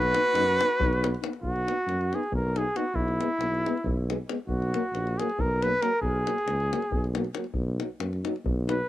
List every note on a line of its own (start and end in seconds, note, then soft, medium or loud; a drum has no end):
0.00 0.14 B1 loud
0.00 1.20 F#4 medium
0.00 1.18 B4 loud
0.00 davul high soft
0.13 0.23 B3 medium
0.13 0.22 D#4 medium
0.13 davul high medium
0.25 davul high soft
0.33 0.59 F#2 medium
0.33 0.46 B3 medium
0.33 0.43 D#4 medium
0.33 davul high medium
0.49 davul high soft
0.60 0.69 B3 medium
0.60 0.68 D#4 medium
0.60 davul high medium
0.80 1.14 B1 loud
0.80 0.90 B3 medium
0.80 0.89 D#4 medium
0.80 davul low loud
0.93 davul high soft
1.01 1.12 B3 medium
1.01 1.10 D#4 soft
1.01 davul high medium
1.15 davul high soft
1.22 1.31 B3 soft
1.22 1.30 D#4 medium
1.22 davul high medium
1.33 davul high soft
1.42 1.67 B1 medium
1.42 2.16 F#4 medium
1.42 davul low medium
1.56 davul high soft
1.66 1.76 B3 soft
1.66 1.75 D#4 soft
1.66 davul high medium
1.87 2.12 F#2 medium
1.87 davul high soft
2.01 davul high soft
2.13 2.21 B3 medium
2.13 2.21 D#4 soft
2.13 2.34 G#4 medium
2.13 davul high soft
2.23 davul high soft
2.32 2.66 B1 loud
2.32 2.59 A#4 medium
2.32 davul low medium
2.56 2.65 B3 soft
2.56 2.64 D#4 medium
2.56 2.78 G#4 medium
2.56 davul high medium
2.76 2.84 B3 medium
2.76 2.84 D#4 medium
2.76 2.97 F#4 medium
2.76 davul high medium
2.94 3.20 B1 medium
2.94 4.09 E4 medium
2.94 davul low medium
3.08 davul high soft
3.20 3.29 G#3 medium
3.20 3.29 B3 medium
3.20 davul high medium
3.39 3.65 B1 medium
3.39 davul high medium
3.54 davul high soft
3.65 3.74 G#3 medium
3.65 3.75 B3 medium
3.65 davul high medium
3.77 davul high soft
3.84 4.19 B1 medium
3.84 davul low medium
4.09 4.17 G#3 medium
4.09 4.17 B3 medium
4.09 davul high medium
4.29 4.37 G#3 medium
4.29 4.37 B3 soft
4.29 davul high medium
4.48 4.73 B1 loud
4.48 5.20 F#4 medium
4.48 davul low medium
4.62 davul high soft
4.74 4.83 F#3 medium
4.74 4.83 A#3 medium
4.74 davul high medium
4.93 5.19 A#1 medium
4.93 davul high soft
5.07 davul high soft
5.18 5.28 F#3 medium
5.18 5.28 A#3 medium
5.18 5.42 G#4 medium
5.18 davul high medium
5.29 davul high soft
5.39 5.74 B1 medium
5.39 5.64 A#4 medium
5.39 davul low medium
5.62 5.71 F#3 medium
5.62 5.71 A#3 medium
5.62 5.83 B4 loud
5.62 davul high medium
5.82 5.90 F#3 medium
5.82 5.90 A#3 medium
5.82 6.01 A#4 medium
5.82 davul high medium
6.02 6.27 B1 medium
6.02 7.12 G#4 medium
6.02 davul low medium
6.26 6.35 F#3 soft
6.26 6.35 A#3 medium
6.26 davul high medium
6.38 davul high soft
6.47 6.72 C#2 medium
6.47 davul high medium
6.60 davul high soft
6.71 6.82 F#3 medium
6.71 6.80 A#3 medium
6.71 davul high medium
6.82 davul high soft
6.92 7.27 B1 medium
6.92 davul low medium
7.04 davul high soft
7.14 7.25 F#3 medium
7.14 7.23 A#3 medium
7.14 davul high medium
7.24 davul high soft
7.35 7.44 F#3 medium
7.35 7.43 A#3 soft
7.35 davul high medium
7.44 davul high soft
7.54 7.80 B1 medium
7.54 davul low medium
7.78 7.88 F#3 soft
7.78 7.87 D#4 soft
7.78 davul high medium
8.00 8.25 F#2 medium
8.00 davul high medium
8.13 davul high soft
8.24 8.34 F#3 medium
8.24 8.33 D#4 medium
8.24 davul high medium
8.36 davul high soft
8.45 8.80 B1 loud
8.45 davul low medium
8.67 8.77 F#3 medium
8.67 8.76 D#4 medium
8.67 8.88 B4 medium
8.67 davul high medium